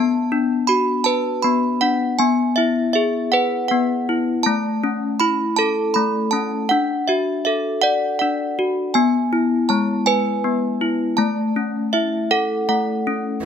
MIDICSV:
0, 0, Header, 1, 2, 480
1, 0, Start_track
1, 0, Key_signature, 3, "major"
1, 0, Tempo, 753769
1, 1393, Time_signature, 6, 3, 24, 8
1, 4756, Tempo, 747198
1, 8598, End_track
2, 0, Start_track
2, 0, Title_t, "Handbells"
2, 0, Program_c, 0, 14
2, 0, Note_on_c, 0, 59, 69
2, 0, Note_on_c, 0, 81, 83
2, 203, Note_on_c, 0, 62, 60
2, 429, Note_on_c, 0, 83, 76
2, 439, Note_on_c, 0, 66, 60
2, 445, Note_off_c, 0, 81, 0
2, 663, Note_on_c, 0, 81, 90
2, 676, Note_on_c, 0, 71, 74
2, 679, Note_off_c, 0, 83, 0
2, 907, Note_on_c, 0, 83, 72
2, 910, Note_off_c, 0, 59, 0
2, 916, Note_off_c, 0, 81, 0
2, 918, Note_on_c, 0, 59, 55
2, 1149, Note_off_c, 0, 62, 0
2, 1152, Note_on_c, 0, 78, 75
2, 1157, Note_on_c, 0, 62, 56
2, 1158, Note_off_c, 0, 83, 0
2, 1391, Note_off_c, 0, 59, 0
2, 1392, Note_on_c, 0, 80, 79
2, 1394, Note_off_c, 0, 71, 0
2, 1395, Note_off_c, 0, 62, 0
2, 1395, Note_off_c, 0, 66, 0
2, 1399, Note_on_c, 0, 59, 68
2, 1400, Note_off_c, 0, 78, 0
2, 1616, Note_off_c, 0, 80, 0
2, 1629, Note_on_c, 0, 76, 69
2, 1641, Note_on_c, 0, 64, 54
2, 1855, Note_off_c, 0, 76, 0
2, 1868, Note_on_c, 0, 76, 66
2, 1881, Note_on_c, 0, 68, 59
2, 2096, Note_off_c, 0, 76, 0
2, 2112, Note_on_c, 0, 78, 79
2, 2123, Note_on_c, 0, 71, 72
2, 2338, Note_off_c, 0, 78, 0
2, 2346, Note_on_c, 0, 78, 66
2, 2357, Note_off_c, 0, 59, 0
2, 2364, Note_on_c, 0, 59, 56
2, 2597, Note_off_c, 0, 64, 0
2, 2605, Note_on_c, 0, 64, 55
2, 2823, Note_on_c, 0, 81, 78
2, 2842, Note_off_c, 0, 64, 0
2, 2842, Note_on_c, 0, 57, 64
2, 2843, Note_off_c, 0, 59, 0
2, 2843, Note_off_c, 0, 68, 0
2, 2843, Note_off_c, 0, 71, 0
2, 2848, Note_off_c, 0, 78, 0
2, 3079, Note_on_c, 0, 61, 60
2, 3309, Note_on_c, 0, 83, 72
2, 3315, Note_on_c, 0, 64, 56
2, 3325, Note_off_c, 0, 81, 0
2, 3543, Note_on_c, 0, 81, 81
2, 3557, Note_on_c, 0, 69, 73
2, 3560, Note_off_c, 0, 83, 0
2, 3772, Note_off_c, 0, 81, 0
2, 3783, Note_on_c, 0, 83, 67
2, 3786, Note_off_c, 0, 57, 0
2, 3793, Note_on_c, 0, 57, 56
2, 4018, Note_on_c, 0, 81, 78
2, 4023, Note_off_c, 0, 61, 0
2, 4031, Note_on_c, 0, 61, 58
2, 4036, Note_off_c, 0, 83, 0
2, 4261, Note_on_c, 0, 78, 77
2, 4273, Note_off_c, 0, 61, 0
2, 4274, Note_off_c, 0, 57, 0
2, 4274, Note_off_c, 0, 64, 0
2, 4274, Note_off_c, 0, 81, 0
2, 4274, Note_on_c, 0, 62, 70
2, 4275, Note_off_c, 0, 69, 0
2, 4506, Note_on_c, 0, 76, 61
2, 4513, Note_on_c, 0, 66, 57
2, 4515, Note_off_c, 0, 78, 0
2, 4732, Note_off_c, 0, 76, 0
2, 4744, Note_on_c, 0, 76, 61
2, 4753, Note_on_c, 0, 69, 56
2, 4972, Note_off_c, 0, 76, 0
2, 4979, Note_on_c, 0, 78, 82
2, 4990, Note_on_c, 0, 74, 80
2, 5213, Note_off_c, 0, 78, 0
2, 5220, Note_on_c, 0, 78, 68
2, 5227, Note_off_c, 0, 62, 0
2, 5234, Note_on_c, 0, 62, 51
2, 5467, Note_off_c, 0, 66, 0
2, 5475, Note_on_c, 0, 66, 60
2, 5680, Note_off_c, 0, 78, 0
2, 5702, Note_on_c, 0, 80, 77
2, 5708, Note_on_c, 0, 59, 72
2, 5710, Note_off_c, 0, 74, 0
2, 5712, Note_off_c, 0, 62, 0
2, 5712, Note_off_c, 0, 69, 0
2, 5713, Note_off_c, 0, 66, 0
2, 5949, Note_on_c, 0, 64, 60
2, 6182, Note_on_c, 0, 81, 70
2, 6188, Note_on_c, 0, 56, 60
2, 6198, Note_off_c, 0, 80, 0
2, 6421, Note_on_c, 0, 80, 80
2, 6428, Note_on_c, 0, 71, 76
2, 6430, Note_off_c, 0, 81, 0
2, 6659, Note_off_c, 0, 59, 0
2, 6666, Note_on_c, 0, 59, 53
2, 6897, Note_off_c, 0, 64, 0
2, 6905, Note_on_c, 0, 64, 56
2, 7132, Note_on_c, 0, 81, 71
2, 7140, Note_off_c, 0, 56, 0
2, 7141, Note_off_c, 0, 59, 0
2, 7141, Note_off_c, 0, 71, 0
2, 7141, Note_on_c, 0, 57, 69
2, 7142, Note_off_c, 0, 64, 0
2, 7159, Note_off_c, 0, 80, 0
2, 7386, Note_on_c, 0, 61, 55
2, 7621, Note_on_c, 0, 76, 66
2, 7626, Note_on_c, 0, 64, 54
2, 7866, Note_on_c, 0, 69, 75
2, 7866, Note_on_c, 0, 78, 75
2, 7870, Note_off_c, 0, 76, 0
2, 8101, Note_off_c, 0, 57, 0
2, 8101, Note_off_c, 0, 78, 0
2, 8109, Note_on_c, 0, 57, 53
2, 8109, Note_on_c, 0, 78, 67
2, 8320, Note_off_c, 0, 81, 0
2, 8347, Note_off_c, 0, 61, 0
2, 8355, Note_on_c, 0, 61, 56
2, 8588, Note_off_c, 0, 57, 0
2, 8594, Note_off_c, 0, 69, 0
2, 8595, Note_off_c, 0, 61, 0
2, 8595, Note_off_c, 0, 64, 0
2, 8598, Note_off_c, 0, 78, 0
2, 8598, End_track
0, 0, End_of_file